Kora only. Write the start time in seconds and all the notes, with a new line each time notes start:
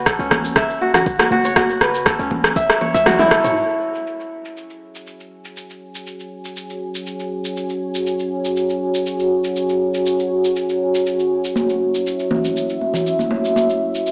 Already playing: F#4 B4 C#5
0.06 A4
0.20 C#4
0.56 E5
0.81 F#4
0.94 F#4
1.20 F#4
1.32 F#4
1.45 C#5
1.56 F#4
1.81 B4
2.06 A4
2.19 C#4
2.56 E5
2.81 C#5
2.94 E5
3.06 F#4
3.19 E4
3.31 A4
3.44 C#5